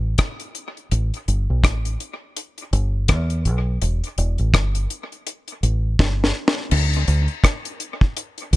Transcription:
Already playing: A1
0.18 kick, cross-stick, closed hi-hat
0.40 closed hi-hat
0.55 closed hi-hat
0.77 closed hi-hat
0.91 A1, closed hi-hat
1.14 closed hi-hat
1.28 G1, closed hi-hat
1.50 B1
1.64 A1, kick, cross-stick, closed hi-hat
1.85 closed hi-hat
2.00 closed hi-hat
2.37 closed hi-hat
2.58 closed hi-hat
2.73 G1, closed hi-hat
3.08 E2, kick, cross-stick, closed hi-hat
3.30 closed hi-hat
3.45 B1, closed hi-hat
3.82 E1, closed hi-hat
4.04 closed hi-hat
4.18 E1, closed hi-hat
4.38 A1, closed hi-hat
4.54 G1, kick, cross-stick, closed hi-hat
4.75 closed hi-hat
4.90 closed hi-hat
5.12 closed hi-hat
5.27 closed hi-hat
5.48 closed hi-hat
5.63 A1, closed hi-hat
5.99 G1, kick, snare
6.24 snare
6.48 snare
6.71 D2, crash
6.93 closed hi-hat
7.08 D2, closed hi-hat
7.28 closed hi-hat
7.44 kick, cross-stick, closed hi-hat
7.65 closed hi-hat
7.80 closed hi-hat
8.01 kick
8.17 closed hi-hat
8.38 closed hi-hat
8.53 C#2, closed hi-hat

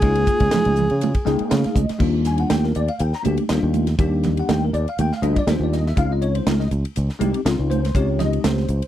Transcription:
Already playing: G#4
0.01 C#2 G#3 A#3 D#4 F4, kick, hi-hat pedal, ride, muted conga
0.15 ride
0.27 kick, hi-hat pedal, muted conga
0.40 C#2, kick, ride
0.51 muted fingered electric bass stroke, snare, hi-hat pedal, ride, high conga, low conga
0.65 C#2, ride
0.76 hi-hat pedal, low conga
0.90 C#3, ride
1.01 hi-hat pedal, ride, muted conga, high conga
1.14 kick, ride
1.25 C#2 G#3 A#3 D#4 G#4 G5, snare, hi-hat pedal
1.39 muted fingered electric bass stroke, ride
1.50 C#3 F5, snare, hi-hat pedal, ride, muted conga, high conga
1.64 muted fingered electric bass stroke, snare, ride
1.75 C#2 D#5, kick, hi-hat pedal, high conga
1.89 muted fingered electric bass stroke, snare, ride
1.98 D#2 G3 A#3 D4 F4, kick, crash, muted conga
2.25 G#5, snare, hi-hat pedal, ride
2.38 F#5, ride
2.50 D#2 G5, snare, hi-hat pedal, ride, high conga
2.64 A#4, snare
2.75 D#2 D5, hi-hat pedal, ride
2.88 F5, ride
2.99 D#2 G5, hi-hat pedal, ride, muted conga
3.13 A#5, snare
3.23 D2 G3 A#3 D4 G4, hi-hat pedal, ride, muted conga, high conga
3.37 ride
3.49 D#2 G3 A#3 D4 F4, snare, hi-hat pedal, ride
3.63 D#2
3.74 hi-hat pedal, ride, high conga
3.87 snare, ride
3.99 D#2 G3 A#3 D4 G4, kick, hi-hat pedal, ride
4.23 snare, hi-hat pedal, ride, low conga
4.37 F#5, ride
4.49 D#2 G5, snare, hi-hat pedal, ride, high conga
4.65 A#4
4.73 D#2 D5, hi-hat pedal, ride
4.88 F5, ride
4.98 D#2 G5, hi-hat pedal, ride, muted conga, high conga
5.12 F5, snare
5.22 D2 G3 A#3 D4 F4 D#5, hi-hat pedal, ride, muted conga
5.36 D5, kick, ride
5.47 D#2 G3 A#3 D4 F4 C5, snare, hi-hat pedal, ride, high conga
5.60 D#2 D5
5.73 D#5, snare, hi-hat pedal, ride
5.87 E5, snare
5.96 C#2 G#3 C4 D#4 F4 F5, kick, hi-hat pedal, ride, muted conga
6.12 D#5
6.22 C#5, hi-hat pedal, ride
6.35 C5, ride
6.47 C#2 A#4, snare, hi-hat pedal, ride, high conga
6.60 D#5, snare
6.71 C#2, hi-hat pedal, ride, muted conga
6.85 ride
6.96 C#2, hi-hat pedal, ride, muted conga
7.09 snare
7.19 C2 G#3 C4 D#4 G4, hi-hat pedal, ride, muted conga, high conga
7.34 ride
7.45 C#2 G#3 C4 D#4 F4, snare, hi-hat pedal, ride
7.59 C#2
7.70 C5, hi-hat pedal, ride, high conga
7.85 snare, ride
7.95 C#2 G#3 C4 D#4 G4 C#5, kick, hi-hat pedal, ride
8.19 D#5, snare, hi-hat pedal, ride, low conga
8.33 ride
8.44 C#2 C5, snare, hi-hat pedal, ride, high conga
8.57 snare
8.68 C#2, hi-hat pedal, ride, muted conga
8.82 ride

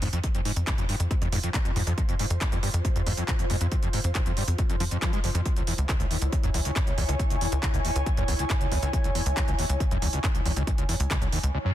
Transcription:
Already playing: F4 C5
0.02 F2 G#2, open hi-hat
0.13 F2, closed hi-hat
0.24 F2, kick, closed hi-hat
0.35 F2, closed hi-hat
0.45 G#2, open hi-hat
0.56 F2, closed hi-hat
0.67 F1, kick, clap, closed hi-hat
0.78 F2, closed hi-hat
0.89 G2, open hi-hat
1.00 F2, closed hi-hat
1.11 F2, kick, closed hi-hat
1.22 F2, closed hi-hat
1.32 F2 G#2, open hi-hat
1.43 F2, closed hi-hat
1.54 A#2, kick, clap, closed hi-hat
1.65 F2, closed hi-hat
1.76 F2 G#2, open hi-hat
1.87 F2, closed hi-hat
1.98 F2, kick, closed hi-hat
2.09 F2, closed hi-hat
2.19 G#2, open hi-hat
2.30 F2, closed hi-hat
2.41 F1, kick, clap, closed hi-hat
2.52 F2, closed hi-hat
2.63 G2, open hi-hat
2.74 F2, closed hi-hat
2.85 F2, kick, closed hi-hat
2.96 F2, closed hi-hat
3.06 F2 G#2, open hi-hat
3.17 F2, closed hi-hat
3.28 A#2, kick, clap, closed hi-hat
3.39 F2, closed hi-hat
3.50 F2 G#2, open hi-hat
3.61 F2, closed hi-hat
3.72 F2, kick, closed hi-hat
3.83 F2, closed hi-hat
3.93 G#2, open hi-hat
4.04 F2, closed hi-hat
4.15 F1, kick, clap, closed hi-hat
4.26 F2, closed hi-hat
4.37 G2, open hi-hat
4.48 F2, closed hi-hat
4.58 F2, kick, closed hi-hat
4.70 F2, closed hi-hat
4.80 F2 F3, open hi-hat
4.91 F2, closed hi-hat
5.02 F3, kick, clap, closed hi-hat
5.13 G#3, closed hi-hat
5.24 F1 F2, open hi-hat
5.35 F2, closed hi-hat
5.46 C#2 E4, kick, closed hi-hat
5.56 C#2, closed hi-hat
5.67 E2, open hi-hat
5.78 C#2, closed hi-hat
5.89 C#2, kick, clap, closed hi-hat
5.94 C#5
6.00 C#2, closed hi-hat
6.11 D#2, open hi-hat
6.17 G#5
6.22 C#2, closed hi-hat
6.33 C#2, kick, closed hi-hat
6.43 C#2 F#2, closed hi-hat
6.54 C#2 E2, open hi-hat
6.65 C#2, closed hi-hat
6.76 F#2, kick, clap, closed hi-hat
6.87 C#2, closed hi-hat
6.98 C#2 E2, open hi-hat
7.08 C#2, closed hi-hat
7.19 C#2, kick, closed hi-hat
7.30 C#2, closed hi-hat
7.41 E2, open hi-hat
7.52 C#2, closed hi-hat
7.63 C#2, kick, clap, closed hi-hat
7.74 C#2, closed hi-hat
7.85 D#2, open hi-hat
7.96 C#2, closed hi-hat
8.06 C#2, kick, closed hi-hat
8.17 C#2 F#2, closed hi-hat
8.28 C#2 E2, open hi-hat
8.39 C#2, closed hi-hat
8.50 F#2, kick, clap, closed hi-hat
8.61 C#2, closed hi-hat
8.71 C#2 E2, open hi-hat
8.82 C#2, closed hi-hat
8.93 C#2, kick, closed hi-hat
9.04 C#2, closed hi-hat
9.15 E2, open hi-hat
9.26 C#2, closed hi-hat
9.37 C#2, kick, clap, closed hi-hat
9.48 C#2, closed hi-hat
9.59 D#2, open hi-hat
9.69 C#2, closed hi-hat
9.80 C#2, kick, closed hi-hat
9.91 C#2 F#2, closed hi-hat
10.02 C#2 E2, open hi-hat
10.13 C#2, closed hi-hat
10.24 F#2, kick, clap, closed hi-hat
10.35 C#2, closed hi-hat
10.45 C#2 E2, open hi-hat
10.56 C#2, closed hi-hat
10.67 C#2, kick, closed hi-hat
10.78 C#2, closed hi-hat
10.89 E2, open hi-hat
11.00 C#2, closed hi-hat
11.11 C#2, kick, clap, closed hi-hat
11.22 C#2, closed hi-hat
11.32 D#2, open hi-hat
11.43 C#2, closed hi-hat
11.54 C#2, reverse cymbal
11.65 F#2

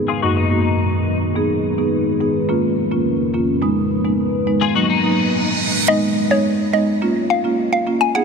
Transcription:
Already playing: G#3 B3 D#4 G#4 B4
0.08 F4 G#4
0.22 F#2 F#3 A#3 D#4 F#4 A#4
0.37 D#4
0.51 F#2 A#3 D#4 F#4
1.35 G#3 B3 D#4 G#4 B4
1.78 B3 D#4 G#4
2.20 B3 D#4 G#4
2.49 F3 A#3 C#4 F4 A#4
2.91 A#3 C#4 F4
3.34 A#3 C#4 F4
3.62 G#3 B3 D#4 B4
4.04 G#3 B3 D#4
4.47 G#3 B3 D#4
4.61 F4 G#4
4.75 F#3 A#3 D#4 F#4 A#4, reverse cymbal
4.90 D#4
5.03 F#3 A#3 D#4
5.88 G#3 B3 D#4 D#5
6.31 G#3 B3 D#4 C#5
6.73 G#3 B3 D#4 D#5
7.02 A#3 C#4 F4
7.30 F5
7.44 A#3 C#4 F4
7.73 F5
7.87 A#3 C#4 F4
8.01 G#5
8.15 B3 D#4 G#4 F#5

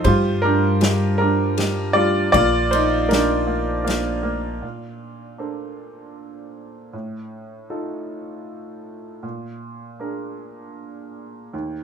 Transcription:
0.04 G2 G3 F4 C5, kick, ride
0.42 G3 D4 A#4
0.81 G3, snare, ride
1.18 G3 D4 A#4
1.58 G3, snare, ride
1.93 G3 F4 D5
2.32 A#1 A#3 F4 D5, kick, ride
2.71 A#3 D#4 C5, ride
3.09 A#3 D4 A#4, snare, ride
3.47 A#3
3.85 A#3, ride
3.89 snare
4.23 A#3
4.62 A#2
5.38 D4 A4 A#4 C5
6.93 A2
7.70 D#4 F4 A4
9.23 A#2
10.00 D4 G#4 A#4
11.53 D#2

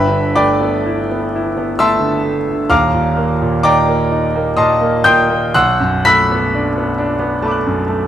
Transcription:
Already playing: G1 G2 B4 E5 G5 B5
0.08 D3
0.35 A3 D5 G5 B5 D6
0.61 B3
0.86 E4
1.12 B3
1.35 E4
1.58 B3
1.79 A3 E5 A5 C6 E6
1.99 D3
2.24 A3
2.49 D3
2.70 D#1 D#2 F5 A#5 D6 F6
2.94 A#2
3.17 A#3
3.42 A#2
3.63 D#4 D5 G5 A#5 D6
3.88 A#3
4.12 D#4
4.36 A#3
4.57 A#2 D#5 A5 C6 D#6
4.81 A#3
5.04 A#2 G5 C6 D#6 G6
5.29 A#3
5.54 B1 F#5 C6 E6 F#6
5.80 F#2
6.05 A3 B5 E6 F#6 B6
6.32 B3
6.55 D4
6.78 B3
6.98 D4
7.19 B3
7.42 A3 A5 B5
7.48 D6 F#6
7.66 F#2
7.88 A3

